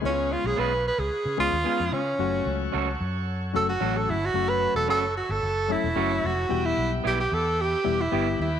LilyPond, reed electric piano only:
\new Staff \with { instrumentName = "Reed electric piano" } { \time 4/4 \key fis \phrygian \tempo 4 = 111 <gis b cis' e' eis'>4. r4 <gis b cis' gis'>8 <gis b cis' eis'>8 r8 | <fis a cis' fis'>4. r4 <fis a cis' fis'>8 <fis a cis' fis'>8 r8 | <fis a cis' fis'>4. r4 <fis a cis' a'>8 <fis a cis' fis'>8 r8 | <g b e' g'>4. r4 <g b e' g'>8 <g b e' g'>8 r8 | }